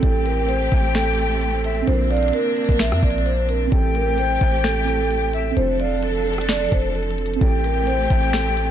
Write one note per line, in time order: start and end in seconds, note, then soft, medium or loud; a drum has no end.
0.00 0.69 A1 loud
0.00 1.86 A3 medium
0.00 1.81 C4 medium
0.00 7.37 C4 medium
0.00 1.83 E4 medium
0.00 1.86 G4 medium
0.00 0.23 A4 loud
0.00 1.61 G5 loud
0.00 kick loud
0.00 closed hi-hat medium
0.05 1.85 G4 medium
0.05 1.86 A4 medium
0.26 0.46 A#4 medium
0.26 closed hi-hat medium
0.48 0.92 C5 medium
0.48 closed hi-hat medium
0.72 1.83 A1 loud
0.72 kick medium
0.72 closed hi-hat medium
0.95 1.84 A4 medium
0.95 finger snap loud
0.95 snare loud
0.95 closed hi-hat medium
1.19 closed hi-hat medium
1.42 closed hi-hat medium
1.64 1.86 E5 medium
1.64 closed hi-hat medium
1.82 3.66 C4 medium
1.82 3.67 D4 medium
1.87 2.32 A#1 loud
1.87 3.70 A#3 medium
1.87 3.70 D4 medium
1.87 3.69 F4 medium
1.87 2.07 C5 loud
1.87 closed hi-hat medium
1.93 3.71 A#4 medium
2.11 2.30 D5 medium
2.11 2.32 F5 medium
2.11 closed hi-hat soft
2.17 closed hi-hat medium
2.23 closed hi-hat medium
2.28 closed hi-hat medium
2.33 2.77 A#4 loud
2.33 closed hi-hat medium
2.57 closed hi-hat medium
2.64 closed hi-hat medium
2.69 2.94 A#1 loud
2.69 kick medium
2.69 closed hi-hat medium
2.79 3.00 E5 medium
2.79 finger snap loud
2.79 snare loud
2.79 closed hi-hat medium
2.92 3.02 F2 loud
2.92 cross-stick loud
3.03 3.69 A#1 loud
3.03 3.23 D5 medium
3.03 kick loud
3.03 closed hi-hat soft
3.11 closed hi-hat medium
3.18 closed hi-hat medium
3.26 3.46 C5 medium
3.26 closed hi-hat medium
3.49 3.69 A#4 medium
3.49 closed hi-hat medium
3.67 4.82 C4 medium
3.67 4.84 E4 medium
3.72 4.39 A1 loud
3.72 5.55 A3 medium
3.72 5.55 G4 medium
3.72 4.86 G4 medium
3.72 3.92 A4 loud
3.72 5.30 G5 loud
3.72 kick loud
3.72 closed hi-hat medium
3.77 4.88 A4 medium
3.95 4.15 A#4 medium
3.95 closed hi-hat medium
4.18 4.62 C5 medium
4.18 closed hi-hat medium
4.41 5.53 A1 loud
4.41 kick medium
4.41 closed hi-hat medium
4.64 5.53 A4 loud
4.64 finger snap loud
4.64 snare loud
4.64 closed hi-hat medium
4.85 5.50 C4 medium
4.85 5.56 E4 soft
4.85 5.57 G4 soft
4.85 closed hi-hat medium
4.90 5.58 A4 medium
5.11 closed hi-hat medium
5.34 5.56 E5 medium
5.34 closed hi-hat medium
5.51 7.35 C4 medium
5.51 7.37 D4 medium
5.56 6.68 F1 loud
5.56 7.39 F3 medium
5.56 7.39 D4 medium
5.56 7.39 F4 medium
5.56 7.39 A4 medium
5.56 5.76 C5 loud
5.56 closed hi-hat medium
5.62 7.40 A4 medium
5.80 6.00 D5 medium
5.80 6.02 F5 medium
5.80 closed hi-hat medium
6.03 6.47 A4 medium
6.03 closed hi-hat medium
6.26 closed hi-hat soft
6.34 closed hi-hat medium
6.38 cross-stick medium
6.38 closed hi-hat medium
6.49 6.69 D5 medium
6.49 finger snap loud
6.49 snare loud
6.49 closed hi-hat medium
6.72 7.39 F1 loud
6.72 6.92 C5 medium
6.72 kick loud
6.72 closed hi-hat medium
6.95 7.39 A4 medium
6.95 closed hi-hat medium
7.03 closed hi-hat medium
7.11 closed hi-hat medium
7.18 closed hi-hat medium
7.26 closed hi-hat medium
7.34 8.71 C4 medium
7.34 closed hi-hat medium
7.40 8.08 A1 loud
7.40 8.71 A3 medium
7.40 8.71 C4 medium
7.40 8.71 E4 medium
7.40 8.71 G4 medium
7.40 7.61 A4 loud
7.40 8.71 G5 loud
7.40 kick loud
7.40 closed hi-hat medium
7.47 8.71 A4 medium
7.64 7.84 A#4 medium
7.64 closed hi-hat medium
7.87 8.30 C5 medium
7.87 closed hi-hat medium
8.10 8.71 A1 loud
8.10 kick medium
8.10 closed hi-hat medium
8.33 8.71 A4 medium
8.33 finger snap loud
8.33 snare loud
8.33 closed hi-hat medium
8.57 closed hi-hat medium